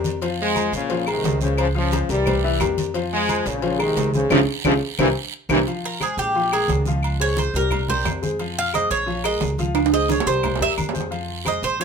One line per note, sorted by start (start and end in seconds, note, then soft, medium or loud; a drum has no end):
0.00 0.67 F2 loud
0.00 0.16 G3 medium
0.00 0.16 G4 medium
0.00 0.16 A#4 medium
0.04 cowbell medium
0.04 high conga medium
0.04 short guiro medium
0.22 0.50 F3 medium
0.22 0.50 F4 medium
0.22 0.50 F5 medium
0.22 cowbell loud
0.22 high conga soft
0.22 low agogo medium
0.22 long guiro medium
0.39 0.71 F3 medium
0.39 0.72 G#3 loud
0.39 high conga soft
0.55 0.84 G#3 medium
0.55 0.84 G#4 medium
0.55 0.84 C5 medium
0.55 cowbell medium
0.55 high conga medium
0.55 low timbale medium
0.55 low agogo loud
0.55 short guiro medium
0.55 claves medium
0.72 1.20 A#1 loud
0.72 1.06 A#2 medium
0.72 1.06 C#3 loud
0.72 cowbell medium
0.72 high conga soft
0.72 low agogo medium
0.72 short guiro medium
0.90 1.04 F3 medium
0.90 1.04 F4 medium
0.90 1.04 F5 medium
0.90 cowbell loud
0.90 high conga soft
0.90 long guiro medium
1.07 1.40 C3 medium
1.07 1.40 D#3 loud
1.07 1.35 G#3 medium
1.07 1.35 G#4 medium
1.07 1.35 A#4 medium
1.07 high conga soft
1.07 low agogo loud
1.07 claves medium
1.24 2.04 C#2 loud
1.24 cowbell medium
1.24 high conga medium
1.24 low timbale medium
1.24 low agogo medium
1.24 short guiro medium
1.41 1.58 A#2 medium
1.41 1.58 C#3 medium
1.41 1.69 G#3 medium
1.41 1.70 G#4 medium
1.41 1.70 C5 medium
1.41 high conga medium
1.41 short guiro medium
1.58 1.68 C#3 medium
1.58 1.68 F3 loud
1.58 cowbell loud
1.58 high conga soft
1.58 low agogo loud
1.58 long guiro medium
1.58 claves medium
1.75 2.09 C#3 medium
1.75 1.89 F3 medium
1.75 2.08 F3 loud
1.75 1.89 F4 medium
1.75 1.89 F5 loud
1.75 high conga soft
1.92 2.06 G#3 medium
1.92 2.06 G#4 medium
1.92 2.06 C5 medium
1.92 cowbell medium
1.92 high conga loud
1.92 low timbale medium
1.92 low agogo medium
1.92 short guiro medium
2.09 2.57 C2 loud
2.09 2.75 E3 medium
2.09 2.37 G3 medium
2.09 2.75 G3 loud
2.09 2.38 G4 medium
2.09 2.38 A#4 medium
2.09 cowbell medium
2.09 high conga soft
2.09 short guiro medium
2.26 cowbell loud
2.26 high conga soft
2.26 low conga medium
2.26 low agogo loud
2.26 long guiro medium
2.26 claves medium
2.44 2.58 E3 loud
2.44 2.58 E4 loud
2.44 2.58 E5 loud
2.44 high conga soft
2.60 3.40 F2 loud
2.60 2.89 G3 medium
2.60 2.89 G4 medium
2.60 2.89 A#4 medium
2.60 cowbell medium
2.60 high conga medium
2.60 low timbale medium
2.60 low agogo loud
2.60 short guiro medium
2.60 claves medium
2.78 cowbell medium
2.78 high conga medium
2.78 short guiro medium
2.94 3.22 F3 medium
2.94 3.23 F4 medium
2.94 3.23 F5 medium
2.94 cowbell loud
2.94 high conga soft
2.94 low agogo medium
2.94 long guiro medium
3.12 3.45 F3 medium
3.12 3.44 G#3 loud
3.12 high conga soft
3.28 3.57 G#3 medium
3.28 3.57 G#4 medium
3.28 3.57 C5 medium
3.28 cowbell medium
3.28 high conga medium
3.28 low timbale medium
3.28 low agogo loud
3.28 short guiro medium
3.28 claves medium
3.46 3.93 A#1 medium
3.46 3.81 A#2 medium
3.46 3.81 C#3 loud
3.46 cowbell medium
3.46 high conga soft
3.46 low agogo medium
3.46 short guiro medium
3.62 3.77 F3 medium
3.62 3.77 F4 loud
3.62 3.77 F5 medium
3.62 cowbell loud
3.62 high conga soft
3.62 long guiro medium
3.78 4.15 C3 medium
3.78 4.15 D#3 loud
3.78 4.07 G#3 medium
3.78 4.07 G#4 medium
3.78 4.07 A#4 medium
3.78 high conga soft
3.78 low agogo loud
3.78 claves medium
3.97 4.29 C#2 loud
3.97 cowbell medium
3.97 high conga medium
3.97 low timbale medium
3.97 low agogo medium
3.97 short guiro medium
4.14 4.31 G#2 medium
4.14 4.30 C#3 loud
4.14 4.28 G#3 medium
4.14 4.29 G#4 medium
4.14 4.29 C5 medium
4.14 high conga medium
4.14 short guiro medium
4.30 4.43 C#2 loud
4.30 4.39 C3 loud
4.30 4.39 C#3 loud
4.30 4.39 F3 loud
4.30 4.42 C#4 loud
4.30 4.42 F4 loud
4.30 4.42 G#4 loud
4.30 cowbell loud
4.30 high conga medium
4.30 high timbale loud
4.30 long guiro loud
4.30 claves loud
4.65 4.78 C#2 loud
4.65 4.74 C3 loud
4.65 4.74 C#3 loud
4.65 4.74 F3 loud
4.65 4.76 C#4 loud
4.65 4.76 F4 loud
4.65 4.76 G#4 loud
4.65 cowbell loud
4.65 high conga loud
4.65 high timbale loud
4.65 long guiro loud
4.65 claves loud
4.99 5.12 C2 loud
4.99 5.09 A#2 loud
4.99 5.08 C3 loud
4.99 5.08 E3 loud
4.99 5.10 G4 loud
4.99 5.10 A#4 loud
4.99 5.10 C5 loud
4.99 cowbell loud
4.99 high conga loud
4.99 high timbale loud
4.99 long guiro loud
4.99 claves loud
5.49 5.62 C2 loud
5.49 5.59 A#2 loud
5.49 5.59 C3 loud
5.49 5.59 E3 loud
5.49 5.61 G4 medium
5.49 5.61 A#4 medium
5.49 5.61 C5 medium
5.49 cowbell loud
5.49 high conga loud
5.49 high timbale loud
5.49 long guiro loud
5.49 claves loud
5.67 5.95 F3 medium
5.67 5.95 F4 medium
5.67 5.95 F5 medium
5.67 low agogo medium
5.67 long guiro medium
5.83 6.01 A#4 medium
5.83 high conga soft
6.00 6.29 G#3 medium
6.00 6.29 G#4 medium
6.00 6.18 G#4 medium
6.00 6.29 C5 medium
6.00 high conga medium
6.00 low timbale medium
6.00 low agogo loud
6.00 short guiro medium
6.00 claves medium
6.17 6.65 A#1 loud
6.17 6.50 G4 medium
6.17 high conga soft
6.17 low agogo medium
6.17 short guiro medium
6.34 6.50 F3 medium
6.34 6.49 F4 medium
6.34 6.50 F5 medium
6.34 high conga soft
6.34 long guiro medium
6.51 6.80 G#3 medium
6.51 6.81 G#4 medium
6.51 6.70 G#4 medium
6.51 6.81 A#4 medium
6.51 high conga soft
6.51 low agogo loud
6.51 claves medium
6.68 7.49 C#2 medium
6.68 high conga medium
6.68 low timbale medium
6.68 low agogo medium
6.68 short guiro medium
6.85 7.15 F3 medium
6.85 7.15 F4 medium
6.85 7.15 F5 medium
6.85 high conga medium
6.85 short guiro medium
7.02 high conga soft
7.02 low agogo loud
7.02 long guiro medium
7.02 claves medium
7.20 7.48 G#3 medium
7.20 7.48 G#4 medium
7.20 7.48 C5 medium
7.20 7.38 C#5 loud
7.20 high conga soft
7.37 7.55 C5 medium
7.37 high conga loud
7.37 low timbale medium
7.37 low agogo medium
7.37 short guiro medium
7.54 8.02 C2 medium
7.54 7.83 G3 medium
7.54 7.83 G4 medium
7.54 7.87 A#4 medium
7.54 7.84 A#4 medium
7.54 high conga soft
7.54 short guiro medium
7.71 high conga soft
7.71 low conga medium
7.71 low agogo loud
7.71 long guiro medium
7.71 claves medium
7.88 8.17 G3 medium
7.88 8.17 G4 medium
7.88 8.17 A#4 medium
7.88 8.06 C5 loud
7.88 high conga soft
7.88 low conga medium
8.05 8.85 F2 loud
8.05 high conga medium
8.05 low timbale medium
8.05 low agogo loud
8.05 short guiro medium
8.05 claves medium
8.22 8.36 G#3 medium
8.22 8.37 G#4 medium
8.22 8.37 C5 medium
8.22 high conga medium
8.22 short guiro medium
8.39 8.67 F3 medium
8.39 8.68 F4 medium
8.39 8.68 F5 medium
8.39 low agogo medium
8.39 long guiro medium
8.58 8.74 F5 loud
8.58 high conga soft
8.73 9.02 G#3 medium
8.73 9.02 G#4 medium
8.73 9.02 C5 medium
8.73 8.91 D#5 medium
8.73 high conga medium
8.73 low timbale medium
8.73 low agogo loud
8.73 short guiro medium
8.73 claves medium
8.90 9.38 A#1 medium
8.90 9.23 C#5 loud
8.90 high conga soft
8.90 low agogo medium
8.90 short guiro medium
9.06 9.21 F3 medium
9.06 9.21 F4 medium
9.06 9.21 F5 medium
9.06 high conga soft
9.06 long guiro medium
9.24 9.52 G#3 medium
9.24 9.52 G#4 medium
9.24 9.53 A#4 medium
9.24 9.42 D#5 medium
9.24 high conga soft
9.24 low agogo loud
9.24 claves medium
9.41 10.21 C#2 medium
9.41 high conga medium
9.41 low timbale medium
9.41 low agogo medium
9.41 short guiro medium
9.58 9.87 F3 medium
9.58 9.87 F4 medium
9.58 9.87 F5 medium
9.58 high conga medium
9.58 short guiro medium
9.75 high timbale medium
9.75 low agogo loud
9.75 long guiro medium
9.75 claves medium
9.86 high timbale medium
9.93 10.21 G#3 medium
9.93 10.21 G#4 medium
9.93 10.21 C5 medium
9.93 10.10 D#5 medium
9.93 high conga soft
10.09 10.27 C#5 medium
10.09 high conga loud
10.09 high timbale medium
10.09 low agogo medium
10.09 short guiro medium
10.20 low timbale loud
10.26 10.58 C2 medium
10.26 10.54 G3 medium
10.26 10.54 G4 medium
10.26 10.55 A#4 medium
10.26 10.59 C5 loud
10.26 high conga soft
10.26 short guiro medium
10.43 high conga soft
10.43 low conga medium
10.43 low timbale medium
10.43 low agogo loud
10.43 long guiro medium
10.43 claves medium
10.56 10.88 G3 medium
10.56 10.88 G4 medium
10.56 low timbale loud
10.60 10.76 E2 medium
10.60 10.88 A#4 medium
10.60 10.72 E5 loud
10.60 high conga soft
10.78 11.57 F2 loud
10.78 high conga medium
10.78 low agogo loud
10.78 short guiro medium
10.78 claves medium
10.89 11.08 G#3 medium
10.89 low timbale loud
10.93 11.08 G#4 medium
10.93 11.08 C5 medium
10.93 high conga medium
10.93 short guiro medium
11.01 low timbale medium
11.11 11.39 F3 medium
11.11 11.39 F4 medium
11.11 11.40 F5 medium
11.11 high conga soft
11.11 low agogo medium
11.11 long guiro medium
11.30 high conga soft
11.45 11.73 G#3 medium
11.45 11.74 G#4 medium
11.45 11.74 C5 medium
11.45 11.64 D#5 medium
11.45 high conga medium
11.45 low timbale medium
11.45 low agogo loud
11.45 short guiro medium
11.45 claves medium
11.62 11.84 A#1 medium
11.62 11.80 C5 loud
11.62 high conga soft
11.62 low agogo medium
11.62 short guiro medium
11.80 11.84 F3 medium
11.80 11.84 F4 medium
11.80 11.84 C#5 loud
11.80 11.84 F5 medium
11.80 high conga soft
11.80 long guiro medium